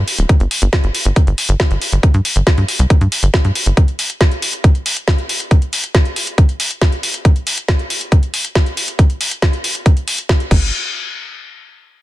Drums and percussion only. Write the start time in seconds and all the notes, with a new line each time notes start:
0.08 open hi-hat
0.18 closed hi-hat
0.29 kick, closed hi-hat
0.40 closed hi-hat
0.51 open hi-hat
0.62 closed hi-hat
0.73 kick, snare, closed hi-hat
0.84 closed hi-hat
0.95 open hi-hat
1.05 closed hi-hat
1.16 kick, closed hi-hat
1.27 closed hi-hat
1.38 open hi-hat
1.49 closed hi-hat
1.60 kick, snare, closed hi-hat
1.71 closed hi-hat
1.82 open hi-hat
1.92 closed hi-hat
2.03 kick, closed hi-hat
2.14 closed hi-hat
2.25 open hi-hat
2.36 closed hi-hat
2.47 kick, snare, closed hi-hat
2.58 closed hi-hat
2.68 open hi-hat
2.79 closed hi-hat
2.90 kick, closed hi-hat
3.01 closed hi-hat
3.12 open hi-hat
3.23 closed hi-hat
3.34 kick, snare, closed hi-hat
3.45 closed hi-hat
3.55 open hi-hat
3.66 closed hi-hat
3.77 kick, closed hi-hat
3.88 closed hi-hat
3.99 open hi-hat
4.10 closed hi-hat
4.21 kick, snare, closed hi-hat
4.32 closed hi-hat
4.42 open hi-hat
4.53 closed hi-hat
4.64 kick, closed hi-hat
4.75 closed hi-hat
4.86 open hi-hat
4.97 closed hi-hat
5.08 kick, snare, closed hi-hat
5.18 closed hi-hat
5.29 open hi-hat
5.40 closed hi-hat
5.51 kick, closed hi-hat
5.62 closed hi-hat
5.73 open hi-hat
5.84 closed hi-hat
5.95 kick, snare, closed hi-hat
6.05 closed hi-hat
6.16 open hi-hat
6.27 closed hi-hat
6.38 kick, closed hi-hat
6.49 closed hi-hat
6.60 open hi-hat
6.71 closed hi-hat
6.82 kick, snare, closed hi-hat
6.92 closed hi-hat
7.03 open hi-hat
7.14 closed hi-hat
7.25 kick, closed hi-hat
7.36 closed hi-hat
7.47 open hi-hat
7.58 closed hi-hat
7.68 kick, snare, closed hi-hat
7.79 closed hi-hat
7.90 open hi-hat
8.01 closed hi-hat
8.12 kick, closed hi-hat
8.23 closed hi-hat
8.34 open hi-hat
8.45 closed hi-hat
8.55 kick, snare, closed hi-hat
8.66 closed hi-hat
8.77 open hi-hat
8.88 closed hi-hat
8.99 kick, closed hi-hat
9.10 closed hi-hat
9.21 open hi-hat
9.32 closed hi-hat
9.42 kick, snare, closed hi-hat
9.53 closed hi-hat
9.64 open hi-hat
9.75 closed hi-hat
9.86 kick, closed hi-hat
9.97 closed hi-hat
10.08 open hi-hat
10.18 closed hi-hat
10.29 kick, snare, closed hi-hat
10.40 closed hi-hat
10.51 kick, crash